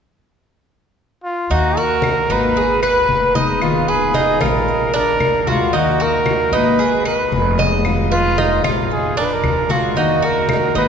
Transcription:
1.24 F4
1.50 D#2 D#3 A#3 D#4 F#4, high conga
1.76 F#4 A#4, high conga
2.02 high conga, claves
2.29 G#1 A#3 D#4 F#4 B4
2.55 G#4, muted steel-string acoustic guitar stroke, high conga
2.82 B4, high conga, claves
3.09 F1, high conga
3.35 G#3 B3 D#4 G#4 D#5, high conga
3.62 B2 D#3 G#3 D#4 F4, high conga, claves
3.88 G#4 B4, high conga
4.14 D#4, high conga
4.40 A#1 D#3 G#3 D#4 F4 A#4, high conga, claves
4.68 muted steel-string acoustic guitar stroke, high conga
4.94 D4 A#4, high conga
5.20 D#2, high conga, claves
5.47 G#3 D4 F4 F#4, high conga
5.73 D#3 A#3 D#4 F#4, high conga
6.00 F#4 A#4, high conga
6.26 high conga, claves
6.52 G#1 A#3 D#4 F#4 B4
6.79 G#4, muted steel-string acoustic guitar stroke, high conga
7.05 B4, high conga, claves
7.32 F1, high conga
7.58 G#3 B3 D#4 G#4 D#5, high conga
7.85 B2 D#3 G#3 D#4 F4, high conga, claves
8.12 F4 B4, high conga
8.38 D#4, high conga
8.64 A#1 D#3 G#3 D#4 F4, high conga, claves
8.90 G#4, muted steel-string acoustic guitar stroke, high conga
9.17 D4 A#4, high conga
9.25 B4
9.33 A#4
9.43 D#2, high conga, claves
9.69 G#3 D4 F4 F#4, high conga
9.95 D#3 A#3 D#4 F#4, high conga
10.22 F#4 A#4, high conga
10.49 high conga, claves
10.75 G#1 A#3 D#4 F#4 B4

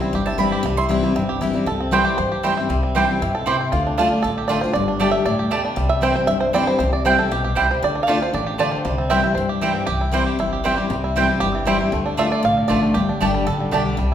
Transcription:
Already playing: C3 G3 E4 G4
0.00 C4 E4
0.13 G1 G2 G4
0.26 E4 A5
0.38 E3 G3 C4 E4 B5
0.52 G4
0.63 C2 C3 G3
0.77 E4 C6
0.89 E3 G3 C4 E4
1.03 G3 C4 E4
1.15 G1 G2 C4
1.29 G4
1.41 E3 G3 C4 E4
1.53 G3 C4 E4
1.66 C2 C3 A4
1.80 C4
1.91 E3 G3 C4 E4 G4 C5 G5
2.05 G4
2.18 G2 C5
2.32 G4
2.43 E3 G3 C4 E4 C5 G5
2.57 C4 E4
2.69 C2 C3 G3
2.83 C4
2.95 E3 G3 C4 E4 G4 C5 G5
3.08 C4 E4
3.22 G2 B2 E4
3.35 A4
3.46 C3 C4 E4 G4 C5 G5
3.61 E4
3.72 D2 D3 F4
3.87 D4
3.98 D3 A3 D4 F4 D5 A5
4.12 D4
4.22 A1 A2 A4
4.38 G4
4.48 D3 A3 D4 F4 D5 A5
4.61 F4 C5
4.66 D4
4.73 G1 G2 D5
4.88 D4
5.00 D3 G3 A3 D4 G4 D5 A5
5.11 E5
5.25 D2 A2 D5
5.39 G4
5.51 B2 G3 A3 G4 D5 A5
5.65 D4
5.76 C2 C3 G3
5.89 E5
6.01 E3 G3 C4 E4 C5 G5
6.14 C4 E4 C5
6.27 G1 G2 E5
6.40 C5
6.53 E3 G3 C4 E4 C5 D5 G5
6.67 C5
6.79 C2 C3 C5
6.93 D5
7.05 E3 G3 C4 E4 C5 G5
7.18 C4 E4 A4
7.31 B1 B2 G4
7.44 G4
7.55 C2 C3 G3 C4 E4 C5 G5
7.71 C5
7.82 D2 D3 D5
7.95 D4
8.03 A3 F5
8.08 D3 A3 D4 F4 G4 D5 A5
8.20 D4 F4 C5
8.34 A1 E3 D5
8.47 G4
8.58 D3 A3 F4 D5 A5
8.71 C5
8.85 C2 C3 G3
8.98 C4
9.10 E3 G3 C4 E4 C5 E5 G5
9.24 C4 E4
9.35 G2 C5
9.49 G4
9.61 E3 G3 C4 E4 C5 G5
9.75 C4
9.86 C2 C3 G4
10.01 E4
10.11 E3 G3 C4 E4 C5 G5
10.26 G4
10.39 G1 G2 E4
10.53 G4
10.64 E3 G3 C4 E4 C5 G5
10.76 C4 E4 G4
10.90 C2 C3 G3
11.04 E4
11.16 E3 G3 C4 E4 C5 G5
11.29 G3 C4 E4
11.40 G1 G2 G4
11.55 E3
11.65 E3 G3 C4 E4 C5 G5
11.78 G3 C4 E4
11.92 D2 D3 A3
12.06 D4
12.17 D3 A3 D4 F4 D5 E5 A5
12.32 D5
12.43 B1 A2 F5
12.57 D3
12.68 A1 D3 A3 D4 F4 D5 A5
12.83 A3
12.94 G1 G2 G4
13.09 D4
13.20 G1 D3 G3 A3 D4 G4 D5 A5
13.34 G3
13.47 A1 D3 A4
13.60 D3
13.71 B1 D3 G3 A3 D4 G4 D5 A5
13.86 G3
13.97 C2 C3 G3

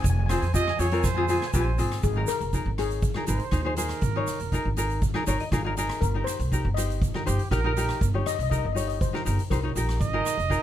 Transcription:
0.02 F1 G#5, kick, closed hi-hat, shaker
0.10 G#5
0.19 G#5
0.26 C4 G#4 C5 G#5, cross-stick, closed hi-hat, shaker
0.30 F4 G#5
0.40 F2 G#5, closed hi-hat
0.47 G#5
0.54 C4 F4 G4 D#5 G#5, kick, closed hi-hat, shaker
0.62 G#5
0.68 G#5, cross-stick
0.78 F2 C4 F4 G#4 C#5 G#5, closed hi-hat, shaker
0.86 G#5
0.91 C4 F4 A#4 G#5, closed hi-hat
1.00 G#5, kick, cross-stick, closed hi-hat, shaker
1.05 C5 G#5
1.15 C4 F4 G#4 G#5
1.23 G#5
1.28 C4 F4 G#4 G#5, closed hi-hat, shaker
1.38 G#5, cross-stick, closed hi-hat
1.47 G#5
1.53 A#1 C4 F4 G4 C5 G#5, kick, closed hi-hat, shaker
1.60 G#5
1.78 G#1 C4 F4 G#4, closed hi-hat, shaker
1.92 cross-stick, closed hi-hat
2.03 G#1 G#4, kick, closed hi-hat, shaker
2.16 D#4 G#4 A#4
2.27 A#4, cross-stick, closed hi-hat, shaker
2.41 F1, closed hi-hat, shaker
2.53 D#4 G#4 A#4, kick, closed hi-hat, shaker
2.66 G#1
2.78 D#4 G#4 C#5, cross-stick, closed hi-hat
2.90 closed hi-hat, shaker
3.02 kick, closed hi-hat, shaker
3.14 D#4 G#4 A#4, cross-stick
3.27 G#1 D#4 G#4 A#4 C5, closed hi-hat, shaker
3.40 closed hi-hat
3.51 D#2 D#4 G#4 C5, kick, cross-stick, closed hi-hat, shaker
3.65 D#4 G#4 C5
3.76 D#4 G#4 A#4 C5, closed hi-hat, shaker
3.89 cross-stick, closed hi-hat, shaker
4.01 G#1, kick, closed hi-hat, shaker
4.16 D#4 G#4 C#5
4.27 cross-stick, closed hi-hat, shaker
4.39 F1, closed hi-hat, shaker
4.52 D#4 G#4 A#4, kick, closed hi-hat, shaker
4.65 G#1
4.77 D#4 G#4 A#4, closed hi-hat, shaker
4.90 closed hi-hat, shaker
5.01 kick, closed hi-hat, shaker
5.14 D#4 G#4 A#4, cross-stick
5.26 G#1 D#4 G#4 A#4 C#5, closed hi-hat, shaker
5.40 D#5, closed hi-hat
5.51 G#1 D#4 G#4 A#4 F5, kick, cross-stick, closed hi-hat, shaker
5.64 D#4 G#4 A#4
5.77 D#4 G#4 A#4, closed hi-hat, shaker
5.89 cross-stick, closed hi-hat, shaker
6.01 G1 A#4, kick, closed hi-hat, shaker
6.14 D#4 G4 A#4
6.24 C5, cross-stick, closed hi-hat, shaker
6.39 C2, closed hi-hat, shaker
6.52 D#4 G4 A#4, kick, closed hi-hat, shaker
6.65 G1
6.74 D#4 G4 C5 D#5, cross-stick, closed hi-hat, shaker
6.90 closed hi-hat, shaker
7.02 kick, closed hi-hat, shaker
7.14 D#4 G4 A#4, cross-stick
7.25 G1 D#4 G4 C5, closed hi-hat, shaker
7.39 closed hi-hat
7.51 A#1 D#4 G4 A#4, kick, cross-stick, closed hi-hat, shaker
7.64 D#4 G4 A#4
7.76 D#4 G4 A#4, closed hi-hat, shaker
7.89 cross-stick, closed hi-hat
8.01 G1, kick, closed hi-hat, shaker
8.14 D#4 G4 C#5
8.26 D#5, cross-stick, closed hi-hat, shaker
8.35 D#5
8.39 C2 D#5, closed hi-hat, shaker
8.50 D#4 G4 A#4 D#5, kick, closed hi-hat, shaker
8.58 D#5
8.65 G1 D#5
8.73 D#4 G4 C#5 D#5
8.77 D#5, closed hi-hat, shaker
8.88 D#5, closed hi-hat
9.01 C5, kick, closed hi-hat, shaker
9.13 D#4 G4 A#4, cross-stick
9.25 G1 D#4 G4 A#4, closed hi-hat, shaker
9.39 closed hi-hat, shaker
9.50 C2 D#4 G4 A#4 C5, kick, cross-stick, closed hi-hat, shaker
9.63 D#4 G4 C#5
9.75 A#1 D#4 G4 A#4, closed hi-hat, shaker
9.89 cross-stick, closed hi-hat, shaker
10.01 G#1 D#5, kick, closed hi-hat, shaker
10.13 D#4 G#4 A#4
10.26 cross-stick, closed hi-hat, shaker
10.38 F1, closed hi-hat, shaker
10.50 D#4 G#4 A#4, kick, closed hi-hat, shaker

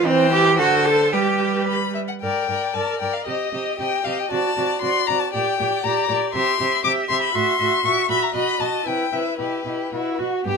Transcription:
0.06 E3 C4 C5 G5
0.32 G4
0.58 D3 F#4 C5 A5
0.85 A4
1.13 G3 G4 B4 G5
1.67 B5
1.95 E5
2.08 F#5
2.21 G2 A#4 D5 G5
2.49 G2 A#4 D5
2.74 G2 A#4 D5 A5
2.99 G2 A#4 D5 G5
3.13 F5
3.26 C3 G4 D#5
3.52 C3 G4 D#5
3.78 C3 G4 D#5 G5
4.04 C3 G4 D#5 F5
4.18 G5
4.31 C3 F#4 D5 A5
4.57 C3 F#4 D5
4.82 C3 F#4 D5 C6
5.07 C3 F#4 D5 A#5
5.19 A5
5.33 A#2 G4 D5 G5
5.58 A#2 G4 D5
5.84 A#2 G4 D5 A#5
6.09 A#2 G4 D5
6.34 C3 G4 E5 C6
6.60 C3 G4 E5
6.84 C3 G4 E5 D6
7.09 C3 G4 E5 C6
7.22 B5
7.35 A2 F#4 E5 C6
7.60 A2 F#4 E5
7.84 A#2 F#4 E5 C#6
8.09 A#2 F#4 E5 B5
8.23 A#5
8.34 B2 F#4 D#5 B5
8.60 B2 F#4 D#5 A5
8.86 C3 E4 B4 G5
9.13 C3 E4 B4 E5
9.39 B2 E4 G4 B4
9.65 B2 E4 G4
9.92 B2 E4 F#4
10.19 B2 F#4
10.46 G2 B3 G4

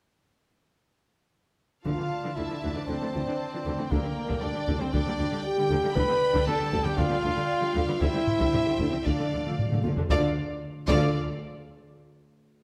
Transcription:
1.84 D2 D3 E3 D4 F4 D5 F5 A5, taiko
1.97 D3 E3 A3
2.24 D3 E3 D4
2.36 D2 D3 E3 A3 E4 E5
2.50 D3 E3 F3
2.63 D2 D3 E3 D4
2.75 D3 E3 A3 D4 D5
2.87 D2 D3 E3 C4 D4 C5
3.01 D3 E3 A3
3.14 D2 D3 E3 F3
3.26 D3 E3 D4
3.53 D3 E3 F3
3.65 D2 D3 E3 D4
3.77 D3 E3 A3
3.90 D2 D3 G3 A#3 D4 A#4 G5, taiko
4.03 D3 G3 A#3
4.28 D3 G3 D4, taiko
4.40 D2 D3 G3 A#3 D4 D5
4.54 D3 G3
4.67 D2 D3 G3 D4, taiko
4.79 D3 G3 A#3 C4 C5
4.93 D2 D3 G3 D4 D5, taiko
5.06 D3 G3 A#3
5.18 D2 D3 G3
5.31 D3 G3 D4
5.43 G4 G5
5.58 D3 G3
5.70 D2 D3 G3 D4
5.83 D3 G3 A#3
5.94 D2 D3 G3 D4 B4 D5 B5, taiko
6.09 D3 G3 B3
6.34 D3 G3 D4, taiko
6.46 D2 D3 G3 B3 A4 A5
6.59 D3 G3
6.72 D2 D3 G3 D4, taiko
6.84 D3 G3 B3 G4 G5
6.96 D2 D3 G3 D4 F4 F5, taiko
7.00 F4
7.09 D3 G3 B3
7.22 D2 D3 G3
7.35 D3 G3 D4
7.61 D3 G3
7.74 D2 D3 G3 D4
7.88 D3 G3 B3
8.00 D2 D3 G3 E4 C5 E5 G5, taiko
8.14 D3 G3 C4
8.27 taiko low-mid
8.39 D3 G3 E4, taiko
8.52 D2 D3 G3 C4, taiko low-mid
8.65 D3 G3
8.76 D2 D3 G3 E4, taiko
8.81 D2
8.90 D3 G3 C4
9.04 D2 D3 A3 D4 F4 D5 F5, taiko
9.13 D3
9.18 D3 A3 D4
9.28 D3 A3
9.33 D2 D3
9.43 D3 A3 F4
9.51 D3
9.59 D3, taiko low-mid
9.67 D3
9.71 D3 A3, taiko low-mid
9.81 D2 D3 A3 F4, taiko high
9.86 D3
9.96 D3 A3 D4, taiko low
10.09 D2 D3 D4 F4 A4 D5 F5, taiko
10.88 D2 D3 F4 A4 D5 F5, taiko

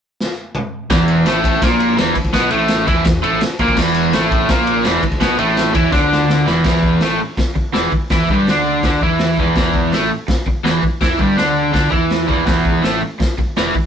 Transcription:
0.20 snare
0.55 mid tom
0.90 E1 E2 E3, kick, snare, ride
1.08 ride
1.26 A1 A2 A3, snare, ride
1.44 kick, ride
1.62 A#1 A#2 A#3, kick, snare, ride
1.80 ride
1.97 E1 E2 E3, snare, ride
2.15 muted overdriven electric guitar stroke, muted fingered electric bass stroke, kick, ride
2.25 kick
2.33 B1 B2 B3, kick, snare, ride
2.50 A1 A2 A3, ride
2.68 snare, ride
2.87 E2 E3 E4, kick, ride
3.03 E1 E2, kick, snare, ride
3.23 A1 A2 A3, ride
3.41 muted overdriven electric guitar stroke, muted fingered electric bass stroke, snare, ride
3.59 A#1 A#2 A#3, kick, ride
3.68 kick
3.76 E1 E2 E3, kick, snare, crash
3.95 ride
4.13 A1 A2 A3, snare, ride
4.31 kick, ride
4.49 A#1 A#2 A#3, kick, snare, ride
4.67 ride
4.84 E1 E2 E3, snare, ride
5.03 muted fingered electric bass stroke, muted overdriven electric guitar stroke, kick, ride
5.12 kick
5.21 B1 B2 B3, kick, snare, ride
5.38 A1 A2 A3, ride
5.57 snare, ride
5.74 E2 E3 E4, kick, ride
5.92 D2 D3 D4, kick, snare
6.12 snare
6.30 snare
6.46 E1 E2 E3, snare
6.63 E1 E2 E3, kick, snare, crash
6.83 kick
7.00 A1 A2 A3, snare, open hi-hat
7.20 muted overdriven electric guitar stroke, muted fingered electric bass stroke
7.37 muted fingered electric bass stroke, muted overdriven electric guitar stroke, kick, snare, open hi-hat
7.56 muted fingered electric bass stroke, muted overdriven electric guitar stroke, kick
7.74 E1 E2 E3, snare, open hi-hat
7.92 muted fingered electric bass stroke, muted overdriven electric guitar stroke, kick
8.10 E2 E3 E4, kick, snare, open hi-hat
8.29 G1 G2 G3, kick
8.47 D2 D3 D4, snare, open hi-hat
8.83 D2 D3 D4, kick, snare, open hi-hat
9.01 E2 E3 E4, kick
9.19 snare, open hi-hat
9.38 E1 E2 E3, kick
9.56 E1 E2 E3, kick, snare, open hi-hat
9.74 kick
9.92 A1 A2 A3, snare, open hi-hat
10.10 muted overdriven electric guitar stroke, muted fingered electric bass stroke
10.28 muted overdriven electric guitar stroke, muted fingered electric bass stroke, kick, snare, open hi-hat
10.46 muted fingered electric bass stroke, muted overdriven electric guitar stroke, kick
10.64 E1 E2 E3, snare, open hi-hat
10.83 muted overdriven electric guitar stroke, muted fingered electric bass stroke, kick
11.01 E2 E3 E4, kick, snare, open hi-hat
11.17 G1 G2 G3, kick
11.36 D2 D3 D4, snare, open hi-hat
11.73 D2 D3 D4, kick, snare, open hi-hat
11.91 E2 E3 E4, kick
12.10 snare, open hi-hat
12.27 E1 E2 E3, kick
12.46 E1 E2 E3, kick, snare, open hi-hat
12.65 kick
12.82 A1 A2 A3, snare, open hi-hat
13.01 muted overdriven electric guitar stroke, muted fingered electric bass stroke
13.20 muted overdriven electric guitar stroke, kick, snare, open hi-hat
13.38 muted overdriven electric guitar stroke, muted fingered electric bass stroke, kick
13.56 E1 E2 E3, snare, open hi-hat
13.75 muted overdriven electric guitar stroke, muted fingered electric bass stroke, kick

